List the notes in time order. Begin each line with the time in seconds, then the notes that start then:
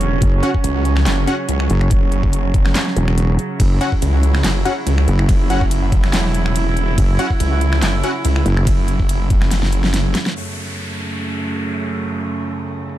Already playing: E1 C#3 F#3 C#4
0.01 closed hi-hat
0.22 F#1, kick, closed hi-hat
0.43 C#4 F#4 F#5, closed hi-hat
0.54 kick
0.64 C#2, closed hi-hat
0.85 closed hi-hat
0.97 finger snap, snare
1.06 F#1, snare, clap, closed hi-hat
1.27 C#4 F#4 F#5, closed hi-hat
1.49 C#2, closed hi-hat
1.60 finger snap
1.70 F#1, closed hi-hat
1.81 finger snap
1.91 F#1, kick, closed hi-hat
2.12 closed hi-hat
2.23 kick
2.33 closed hi-hat
2.54 kick, closed hi-hat
2.66 finger snap, snare
2.75 snare, clap, closed hi-hat
2.87 snare
2.96 E1, closed hi-hat
3.08 finger snap
3.18 closed hi-hat
3.39 closed hi-hat
3.60 F#1 E4, kick, closed hi-hat, ride
3.81 C#4 F#4 F#5, closed hi-hat
3.92 kick
4.02 C#2, closed hi-hat, ride
4.23 closed hi-hat
4.35 finger snap, snare
4.44 F#1, snare, clap, closed hi-hat, ride
4.65 C#4 F#4 F#5, closed hi-hat
4.87 C#2, closed hi-hat, ride
4.98 finger snap
5.08 F#1, closed hi-hat
5.19 finger snap
5.29 F#1, kick, closed hi-hat, ride
5.50 C#4 F#4 F#5, closed hi-hat
5.61 kick
5.71 closed hi-hat, ride
5.92 kick, closed hi-hat
6.04 finger snap, snare
6.13 E1, snare, clap, closed hi-hat, ride
6.25 snare
6.34 closed hi-hat
6.46 finger snap
6.56 closed hi-hat, ride
6.77 closed hi-hat
6.98 F#1, kick, closed hi-hat, ride
7.19 C#4 F#4 F#5, closed hi-hat
7.30 kick
7.40 C#2, closed hi-hat, ride
7.61 closed hi-hat
7.73 finger snap, snare
7.82 F#1, snare, clap, closed hi-hat, ride
8.04 C#4 F#4 F#5, closed hi-hat
8.25 C#2, closed hi-hat, ride
8.36 finger snap
8.46 F#1, closed hi-hat
8.57 finger snap
8.67 F#1, kick, closed hi-hat, ride
8.88 closed hi-hat
8.99 kick
9.09 closed hi-hat, ride
9.30 kick, closed hi-hat
9.42 finger snap, snare
9.51 F#1, snare, closed hi-hat, ride
9.63 snare
9.73 closed hi-hat
9.84 snare
9.94 snare, closed hi-hat, ride
10.15 snare, closed hi-hat
10.26 snare
10.36 F#2 C#3 A3, closed hi-hat, crash, downlifter
10.57 closed hi-hat
10.78 closed hi-hat
10.99 closed hi-hat
11.20 closed hi-hat
11.42 closed hi-hat
11.63 closed hi-hat
11.84 closed hi-hat
12.05 closed hi-hat
12.26 closed hi-hat
12.47 closed hi-hat
12.68 closed hi-hat
12.89 closed hi-hat